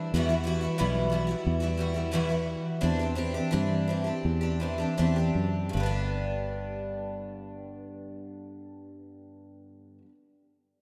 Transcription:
Already playing: twelve-string acoustic guitar G3 D4 E4
0.14 fingered electric bass E2, twelve-string acoustic guitar E2 B2 E3 G3 E4 F#4
0.29 twelve-string acoustic guitar E3 G3 E4 F#4
0.44 twelve-string acoustic guitar E3 G3 E4 F#4
0.61 twelve-string acoustic guitar E3 G3 E4 F#4
0.78 fingered electric bass B1, twelve-string acoustic guitar E2 B2 E3 G3 E4 F#4
1.10 twelve-string acoustic guitar E3 G3 E4
1.14 twelve-string acoustic guitar F#4
1.27 twelve-string acoustic guitar G3 E4 F#4
1.31 twelve-string acoustic guitar E3
1.46 fingered electric bass E2
1.60 twelve-string acoustic guitar E3 G3 E4 F#4
1.77 twelve-string acoustic guitar E3 G3 E4 F#4
1.94 twelve-string acoustic guitar E3 G3 E4 F#4
2.12 twelve-string acoustic guitar E2 B2 E3 G3 E4 F#4
2.29 twelve-string acoustic guitar E3 G3 E4 F#4
2.81 fingered electric bass E2, twelve-string acoustic guitar E3 C4 D4 G4
2.99 twelve-string acoustic guitar C4 D4 G4
3.15 twelve-string acoustic guitar E3 C4 D4 G4
3.34 twelve-string acoustic guitar C4 D4 G4
3.51 fingered electric bass G2, twelve-string acoustic guitar E3 C4 D4 G4
3.88 twelve-string acoustic guitar E3 C4 D4 G4
4.04 twelve-string acoustic guitar C4 D4 G4
4.25 fingered electric bass E2
4.41 twelve-string acoustic guitar C4 D4 G4
4.60 twelve-string acoustic guitar E3 C4 D4 G4
4.78 twelve-string acoustic guitar C4 D4 G4
4.97 fingered electric bass E2, twelve-string acoustic guitar E3 C4 D4 G4
5.16 twelve-string acoustic guitar C4 D4 G4
5.35 fingered electric bass F#2
5.69 twelve-string acoustic guitar G2 D3
5.75 fingered electric bass G1, twelve-string acoustic guitar G3
5.80 twelve-string acoustic guitar B3 D4
5.86 twelve-string acoustic guitar G4

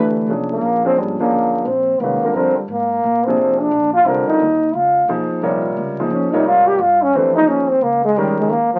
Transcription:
Already playing: upright bass D2, trombone D3, grand piano E3 A3 D4 G4 B4, soprano saxophone B4
0.27 upright bass C2, grand piano F3 A#3 C#4 D4 G#4
0.52 trombone A#3
0.61 upright bass A#1
0.85 grand piano F3 A#3 C#4 D4 G#4, trombone C4
0.96 upright bass G#1, trombone G3
1.18 grand piano F3 A#3 C#4 D4 G#4, trombone A#3, muted upright bass stroke
1.30 upright bass G1
1.65 upright bass A#1, trombone C4
2.00 upright bass C2, grand piano D#3 G#3 C#4 F#4 B4, trombone A#3
2.22 grand piano D3 G3 C4 F4 A#4, muted upright bass stroke
2.34 upright bass F2, grand piano D3 G3 C4 F4 A#4, trombone C4
2.57 trombone G3, muted upright bass stroke
2.68 upright bass G#2, trombone A#3
3.04 upright bass A#2
3.25 grand piano C3 F3 A#3 D4 G#4, trombone C4
3.37 upright bass F2
3.61 trombone D4
3.71 upright bass A#1
3.94 trombone F4
4.05 upright bass C2, grand piano D3 G3 C4 F4 A#4, trombone C4
4.27 trombone D#4, muted upright bass stroke
4.40 upright bass D#2
4.73 upright bass C#2, trombone F4
5.08 upright bass B1, grand piano F3 A#3 D#4 G#4 C5
5.30 muted upright bass stroke
5.42 upright bass A#1, grand piano C3 G3 F4 A#4 C#5
5.77 upright bass C#2
6.00 grand piano F3 A#3 D#4 G#4 C5
6.10 upright bass F2, trombone C#4
6.32 grand piano C3 G3 F4 A#4 C#5, trombone D#4, muted upright bass stroke
6.44 upright bass G#2, trombone F4
6.67 trombone G4
6.79 upright bass G2, trombone F4
7.02 trombone C#4
7.13 upright bass F2, grand piano E3 A3 D4 G4 B4, trombone C4
7.35 grand piano F3 A#3 D#4 G#4 C5, trombone D#4
7.47 upright bass D#2, trombone C#4
7.69 trombone C4
7.81 upright bass C#2, trombone A#3
8.05 trombone G#3
8.16 upright bass F2, grand piano D#3 G#3 C#4 G4 A#4, trombone G3
8.27 upright bass D#2
8.39 upright bass C#2, trombone G#3
8.49 upright bass D#2, trombone A#3
8.74 trombone F3

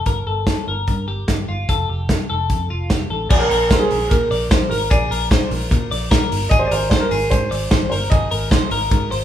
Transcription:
0.06 fingered electric bass G1, clean electric guitar A#4, kick, closed hi-hat
0.26 fingered electric bass G1, clean electric guitar A4
0.47 kick, snare, closed hi-hat
0.67 fingered electric bass G1, clean electric guitar A#4
0.87 fingered electric bass G2, kick, closed hi-hat
1.08 fingered electric bass G1, clean electric guitar G4
1.28 fingered electric bass G1, kick, snare, closed hi-hat
1.48 fingered electric bass G1, clean electric guitar F4
1.69 fingered electric bass F1, clean electric guitar A4, kick, closed hi-hat
1.89 fingered electric bass F1, clean electric guitar G4
2.09 kick, snare, closed hi-hat
2.30 fingered electric bass F1, clean electric guitar A4
2.50 fingered electric bass F2, kick, closed hi-hat
2.70 fingered electric bass F1, clean electric guitar F4
2.90 clean electric guitar G4, kick, snare, closed hi-hat
3.10 fingered electric bass A1, clean electric guitar A4
3.29 fingered electric bass A#1, clean electric guitar G#4, upright piano D5, kick, crash
3.39 upright piano A#4
3.50 fingered electric bass A#1, clean electric guitar A#4, open hi-hat
3.70 upright piano A#4, clean electric guitar C5, kick, snare, hi-hat pedal, ride
3.79 upright piano G#4
3.91 fingered electric bass A#1, clean electric guitar A#4, open hi-hat
4.09 fingered electric bass A#2, upright piano A#4, kick, hi-hat pedal, ride
4.31 fingered electric bass A#1, clean electric guitar D5, open hi-hat
4.51 fingered electric bass A#1, clean electric guitar C5, kick, snare, hi-hat pedal, ride
4.69 fingered electric bass G#1, upright piano A#4, clean electric guitar A#4, open hi-hat
4.90 fingered electric bass A#1, clean electric guitar G#4, upright piano D5, kick, hi-hat pedal, ride
5.11 fingered electric bass A#1, clean electric guitar A#4, open hi-hat
5.31 clean electric guitar C5, kick, snare, hi-hat pedal, ride
5.51 fingered electric bass A#1, clean electric guitar A#4, open hi-hat
5.71 fingered electric bass A#2, kick, hi-hat pedal, ride
5.91 fingered electric bass A#1, clean electric guitar D5, open hi-hat
6.11 clean electric guitar A#4, kick, snare, hi-hat pedal, ride
6.31 fingered electric bass G1, open hi-hat
6.49 fingered electric bass G#1, clean electric guitar G#4, upright piano D#5, kick, hi-hat pedal, ride
6.59 upright piano C5
6.66 upright piano D5
6.71 fingered electric bass G#1, clean electric guitar A#4, upright piano C5, open hi-hat
6.90 upright piano C5, clean electric guitar C5, kick, snare, ride
7.00 upright piano A#4
7.11 fingered electric bass G#1, clean electric guitar G#4, open hi-hat
7.30 fingered electric bass G#2, upright piano C5, kick, hi-hat pedal, ride
7.51 fingered electric bass G#1, clean electric guitar D5, open hi-hat
7.71 fingered electric bass G#1, clean electric guitar C5, kick, snare, hi-hat pedal, ride
7.90 fingered electric bass G1, clean electric guitar A#4, upright piano C5, open hi-hat
8.10 fingered electric bass G#1, clean electric guitar G#4, upright piano D#5, kick, hi-hat pedal, ride
8.31 fingered electric bass G#1, clean electric guitar A#4, open hi-hat
8.51 clean electric guitar C5, kick, snare, hi-hat pedal, ride
8.71 fingered electric bass G#1, clean electric guitar A#4, open hi-hat
8.91 fingered electric bass G#2, kick, hi-hat pedal, ride
9.11 fingered electric bass G#1, clean electric guitar C5, open hi-hat

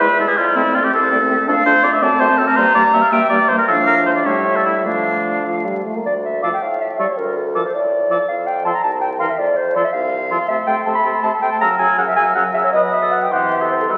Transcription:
Already playing: bassoon E2, flute E5
0.01 french horn G#3, clarinet E4, oboe B4
0.19 french horn G#3, clarinet E4, oboe A4
0.29 oboe G#4
0.37 bassoon F2, oboe F4, flute D5
0.55 french horn A3, clarinet C4, oboe E4
0.74 french horn A3, clarinet C4, oboe F4
0.84 oboe G4
0.93 bassoon C2, oboe A4, flute C5
1.11 french horn A3, clarinet C4, flute D5
1.30 french horn A3, clarinet C4, flute E5
1.47 bassoon F2, french horn A3, clarinet D4, oboe A4, flute F5
1.65 bassoon F2, french horn A3, clarinet D4, oboe C5
1.83 bassoon F2, french horn A3, clarinet D4, oboe D5
1.93 oboe E5
2.01 bassoon F#2, french horn A3, clarinet C4, oboe D5, flute A5
2.20 bassoon F#2, french horn A3, clarinet C4, oboe C5
2.38 bassoon F#2, french horn A3, clarinet C4, oboe A4
2.47 oboe A#4
2.56 bassoon G2, french horn G3, clarinet A#3, oboe C5, flute A#5
2.75 bassoon G2, french horn G3, clarinet A#3, oboe D5
2.93 bassoon G2, french horn G3, clarinet A#3, oboe E5
3.02 oboe F5
3.11 bassoon G2, french horn G3, clarinet A#3, oboe E5, flute G5
3.29 bassoon G2, french horn G3, clarinet A#3, oboe D5
3.49 bassoon G2, french horn G3, clarinet A#3, oboe C5
3.58 oboe A#4
3.67 bassoon A2, french horn F3, clarinet D4, oboe A4, flute F5
3.86 oboe A#4
4.06 oboe C5
4.16 oboe D5
4.25 bassoon A2, french horn G3, clarinet A3, oboe C#5, flute E5
4.56 oboe A4
4.65 oboe E4
4.84 bassoon D3, french horn F3, clarinet A3, oboe D4, flute F5
5.46 french horn F3
5.65 french horn G3
5.86 french horn A3
5.96 french horn A#3
6.05 bassoon D2, clarinet D5
6.25 clarinet E5
6.42 french horn F3, oboe A4, clarinet F5, flute D6
6.54 clarinet G5
6.62 bassoon A2, clarinet F5
6.81 clarinet E5
6.99 french horn G3, oboe A4, clarinet D5, flute C#6
7.09 clarinet C#5
7.18 bassoon D2, clarinet A#4
7.37 clarinet A4
7.55 french horn F3, oboe A4, clarinet A#4, flute D6
7.66 clarinet C5
7.73 bassoon A2, clarinet D5
8.10 french horn F3, oboe A4, flute D6
8.28 bassoon F2, clarinet F5
8.47 clarinet G5
8.65 french horn F3, oboe A4, clarinet A5, flute C6
8.75 clarinet A#5
8.83 bassoon C2, clarinet A5
9.01 clarinet G5
9.19 french horn E3, oboe A#4, clarinet F5, flute C6
9.30 clarinet E5
9.39 bassoon F2, clarinet D5
9.56 clarinet C5
9.75 french horn F3, oboe A4, clarinet D5, flute C6
9.84 clarinet E5
9.93 bassoon C2, clarinet F5
10.31 french horn F3, oboe A4, flute C6
10.48 bassoon C3, french horn A3, oboe A4, clarinet E5, flute C6
10.67 bassoon C3, french horn A3, oboe A4, clarinet G5, flute C6
10.85 bassoon C3, french horn A3, oboe A4, clarinet A5, flute C6
10.95 clarinet B5
11.04 bassoon C3, french horn A3, oboe A4, flute C6
11.23 bassoon C3, french horn A3, oboe A4, clarinet A5, flute C6
11.42 bassoon C3, french horn A3, oboe A4, clarinet G5, flute C6
11.52 clarinet A5
11.61 bassoon C#3, french horn F#3, oboe A#4, clarinet A#5, flute E6
11.79 bassoon C#3, french horn F#3, oboe A#4, clarinet G#5, flute E6
11.98 bassoon C#3, french horn F#3, oboe A#4, clarinet F#5, flute E6
12.07 clarinet E5
12.16 bassoon C#3, french horn F#3, oboe A#4, clarinet G#5, flute E6
12.35 bassoon C#3, french horn F#3, oboe A#4, clarinet F#5, flute E6
12.54 bassoon C#3, french horn F#3, oboe A#4, clarinet E5, flute E6
12.64 clarinet C#5
12.73 bassoon B2, french horn F#3, oboe B4, clarinet D#5, flute D#6
12.92 clarinet E5
13.02 oboe A4
13.12 clarinet F#5
13.23 clarinet G5
13.31 bassoon C3, french horn E3, oboe G4, clarinet F#5, flute C6
13.52 clarinet E5
13.62 oboe A4
13.71 clarinet C5
13.81 clarinet A4
13.89 bassoon B2, french horn G3, clarinet B4, oboe B4, flute E6

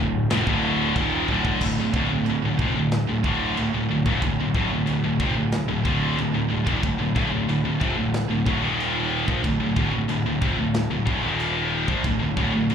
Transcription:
Already playing: picked electric bass D1, distorted electric guitar D2
0.00 distorted electric guitar A2
0.30 picked electric bass F1, distorted electric guitar F2 C3, snare, china
0.47 picked electric bass D1, distorted electric guitar D2 A2 D3, kick
0.96 picked electric bass D#1, distorted electric guitar D#2 A#2 D#3, kick, china
1.28 picked electric bass D1, distorted electric guitar D2 A2 D3, kick
1.45 kick
1.61 picked electric bass D1, distorted electric guitar D2 A2, kick, crash, china
1.78 picked electric bass D1, distorted electric guitar D2 A2
1.94 picked electric bass D1, distorted electric guitar D2 A2, kick
2.11 picked electric bass D1, distorted electric guitar D2 A2
2.24 picked electric bass D1, distorted electric guitar D2 A2, china
2.30 distorted electric guitar D2 A2
2.44 picked electric bass D1, distorted electric guitar D2 A2
2.59 picked electric bass F1, distorted electric guitar F2 C3, kick
2.73 distorted electric guitar D2 A2
2.77 picked electric bass D1, distorted electric guitar D2 A2
2.92 snare, china
3.08 picked electric bass D1, distorted electric guitar D2 A2
3.24 picked electric bass D1, distorted electric guitar D2 A2 D3, kick
3.57 picked electric bass D1, distorted electric guitar D2 A2, china
3.74 picked electric bass D1, distorted electric guitar D2 A2
3.90 picked electric bass D1, distorted electric guitar D2 A2
4.06 picked electric bass D#1, distorted electric guitar D#2 A#2, kick
4.22 picked electric bass D1, distorted electric guitar D2 A2, kick, china
4.39 picked electric bass D1, distorted electric guitar D2 A2
4.54 picked electric bass D1, distorted electric guitar D2 A2, kick
4.71 picked electric bass D1, distorted electric guitar D2 A2
4.86 picked electric bass D1, distorted electric guitar D2 A2, china
5.04 picked electric bass D1, distorted electric guitar D2 A2
5.20 picked electric bass F1, distorted electric guitar F2 C3, kick
5.35 picked electric bass D1, distorted electric guitar D2 A2
5.52 snare, china
5.68 picked electric bass D1, distorted electric guitar D2 A2
5.85 picked electric bass D1, distorted electric guitar D2 A2 D3, kick
6.18 picked electric bass D1, distorted electric guitar D2 A2, china
6.34 picked electric bass D1, distorted electric guitar D2 A2
6.50 picked electric bass D1, distorted electric guitar D2 A2
6.66 picked electric bass D#1, distorted electric guitar D#2 A#2, kick
6.82 picked electric bass D1, distorted electric guitar D2 A2, kick, china
6.98 picked electric bass D1, distorted electric guitar D2 A2
7.15 picked electric bass D1, distorted electric guitar D2 A2, kick
7.31 picked electric bass D1, distorted electric guitar D2 A2
7.48 picked electric bass D1, distorted electric guitar D2 A2, china
7.65 picked electric bass D1, distorted electric guitar D2 A2
7.80 picked electric bass F1, distorted electric guitar F2 C3, kick
7.96 picked electric bass D1, distorted electric guitar D2 A2
8.14 snare, china
8.30 picked electric bass D1, distorted electric guitar D2 A2
8.46 picked electric bass D1, distorted electric guitar D2 A2, kick
8.62 picked electric bass D#1, distorted electric guitar D#2 A#2 D#3
8.80 china
9.28 picked electric bass A#1, distorted electric guitar A#2 F3, kick
9.43 picked electric bass D1, distorted electric guitar D2 A2, kick, china
9.60 picked electric bass D1, distorted electric guitar D2 A2
9.76 picked electric bass D1, distorted electric guitar D2 A2, kick
9.93 picked electric bass D1, distorted electric guitar D2 A2
10.08 picked electric bass D1, distorted electric guitar D2 A2, china
10.26 picked electric bass D1, distorted electric guitar D2 A2
10.42 picked electric bass F1, distorted electric guitar F2 C3, kick
10.58 picked electric bass D1, distorted electric guitar D2 A2
10.74 snare, china
10.90 picked electric bass D1, distorted electric guitar D2 A2
11.06 picked electric bass D1, distorted electric guitar D2 A2, kick
11.22 picked electric bass D#1, distorted electric guitar D#2 A#2 D#3
11.40 china
11.88 picked electric bass A#1, distorted electric guitar A#2 F3, kick
12.04 picked electric bass D1, distorted electric guitar D2 A2, kick, china
12.19 picked electric bass D1, distorted electric guitar D2 A2
12.37 picked electric bass D1, distorted electric guitar D2 A2, kick
12.53 picked electric bass D1, distorted electric guitar D2 A2
12.70 picked electric bass D1, distorted electric guitar D2 A2, china

